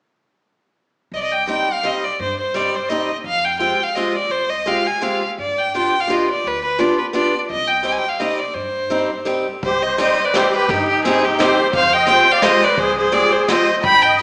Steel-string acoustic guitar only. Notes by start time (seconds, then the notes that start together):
1.47 G3 C4 D#4 G4
1.83 G3 C4 D#4 G4
2.54 G3 C4 D#4 G4
2.90 G3 C4 D#4 G4
3.59 G#3 C4 F4 G4
3.96 G#3 C4 F4 G4
4.66 G#3 C4 F4 G4
5.01 G#3 C4 F4 G4
5.75 B3 D4 F4 G4
6.07 B3 D4 F4 G4
6.79 B3 D4 F4 G4
7.13 B3 D4 F4 G4
7.83 G3 C4 D#4 G4
8.20 G3 C4 D#4 G4
8.90 G3 C4 D#4 G4
9.25 G3 C4 D#4 G4
9.98 G3 C4 D#4 G4
10.35 G3 C4 D#4 G4
11.05 G3 C4 D#4 G4
11.39 G3 C4 D#4 G4
12.07 G#3 C4 F4 G4
12.42 G#3 C4 F4 G4
13.12 G#3 C4 F4 G4
13.48 G#3 C4 F4 G4